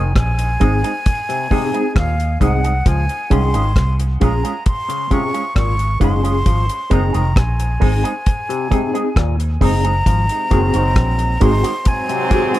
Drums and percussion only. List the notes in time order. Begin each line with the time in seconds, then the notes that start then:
0.16 kick, cross-stick, closed hi-hat
0.39 closed hi-hat
0.61 kick, closed hi-hat
0.84 closed hi-hat
1.06 kick, closed hi-hat
1.30 closed hi-hat
1.51 kick, open hi-hat
1.74 closed hi-hat
1.96 kick, cross-stick, closed hi-hat
2.20 closed hi-hat
2.41 kick, closed hi-hat
2.64 closed hi-hat
2.86 kick, closed hi-hat
3.09 closed hi-hat
3.31 kick, closed hi-hat
3.54 closed hi-hat
3.76 kick, cross-stick, closed hi-hat
3.99 closed hi-hat
4.21 kick, closed hi-hat
4.45 closed hi-hat
4.66 kick, closed hi-hat
4.90 closed hi-hat
5.11 kick, closed hi-hat
5.34 closed hi-hat
5.56 kick, cross-stick, closed hi-hat
5.79 closed hi-hat
6.01 kick, closed hi-hat
6.25 closed hi-hat
6.46 kick, closed hi-hat
6.69 closed hi-hat
6.91 kick, closed hi-hat
7.14 closed hi-hat
7.36 kick, cross-stick, closed hi-hat
7.60 closed hi-hat
7.81 kick, open hi-hat
8.05 closed hi-hat
8.26 kick, closed hi-hat
8.50 closed hi-hat
8.72 kick, closed hi-hat
8.95 closed hi-hat
9.16 kick, cross-stick, closed hi-hat
9.40 closed hi-hat
9.61 kick, open hi-hat
9.85 closed hi-hat
10.06 kick, closed hi-hat
10.29 closed hi-hat
10.51 kick, closed hi-hat
10.74 closed hi-hat
10.96 kick, cross-stick, closed hi-hat
11.19 closed hi-hat
11.41 kick, closed hi-hat
11.64 closed hi-hat
11.85 kick, closed hi-hat
12.09 closed hi-hat
12.31 kick, closed hi-hat
12.54 closed hi-hat